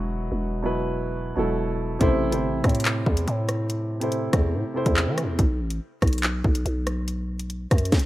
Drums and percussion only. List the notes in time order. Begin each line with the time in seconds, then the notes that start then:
2.01 kick, closed hi-hat
2.32 closed hi-hat
2.64 kick, cross-stick, closed hi-hat
2.69 closed hi-hat
2.75 closed hi-hat
2.80 closed hi-hat
2.85 clap, closed hi-hat
3.06 kick
3.17 closed hi-hat
3.28 closed hi-hat
3.49 cross-stick, closed hi-hat
3.70 closed hi-hat
4.01 closed hi-hat
4.12 closed hi-hat
4.33 kick, cross-stick, closed hi-hat
4.86 kick, closed hi-hat
4.97 clap
5.18 cross-stick, closed hi-hat
5.39 kick, closed hi-hat
5.70 closed hi-hat
6.02 kick, cross-stick, closed hi-hat
6.07 closed hi-hat
6.13 closed hi-hat
6.18 closed hi-hat
6.23 clap, closed hi-hat
6.44 kick
6.55 closed hi-hat
6.66 closed hi-hat
6.87 cross-stick, closed hi-hat
7.08 closed hi-hat
7.39 closed hi-hat
7.50 closed hi-hat
7.71 kick, cross-stick, closed hi-hat
7.78 closed hi-hat
7.85 closed hi-hat
7.92 kick, snare, closed hi-hat
7.99 closed hi-hat